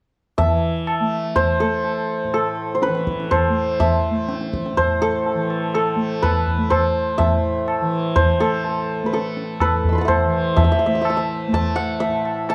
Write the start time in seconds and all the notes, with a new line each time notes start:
0.38 E3 E5, tabla tin, tabla ge
0.87 tabla na
1.00 A3
1.36 C5, tabla tin, tabla ge
1.60 A3 A4
1.85 tabla tin
2.24 A2
2.34 A4, tabla na
2.75 C5
2.82 B4, tabla te
2.87 E3
2.95 tabla te
3.07 tabla ke
3.20 tabla te
3.31 C5, tabla na, tabla ge
3.49 A3
3.80 E5, tabla tin, tabla ge
4.11 A3
4.29 tabla te
4.41 tabla te
4.54 tabla ke
4.66 tabla te
4.73 A2
4.77 C5, tabla tin, tabla ge
5.02 A4
5.26 tabla tin
5.34 E3
5.50 tabla na
5.74 A4, tabla na
5.96 A3
6.22 B4, tabla na, tabla ge
6.47 tabla ge
6.58 A3
6.70 C5, tabla na, tabla ge
7.18 A2 E5, tabla tin, tabla ge
7.68 tabla na
7.81 E3
8.16 C5, tabla tin, tabla ge
8.40 A3 A4, tabla na
8.65 tabla tin
9.03 A3 B4
9.13 A4, tabla te
9.37 tabla te
9.60 A2 B4, tabla na, tabla ge
9.84 tabla ge
9.89 C6 E6
9.95 A5 B5
10.01 E5 F#5
10.08 C5, tabla na, tabla ge
10.25 E3
10.56 E5, tabla tin, tabla ge
10.64 E5
10.72 E5
10.79 E5
10.86 A3 E5
10.95 E5
11.01 E5, tabla na
11.10 E5
11.17 E5
11.48 A3
11.53 A5, tabla tin, tabla ge
11.76 F#5
12.00 E5, tabla tin
12.08 A2
12.25 tabla na
12.49 A5, tabla na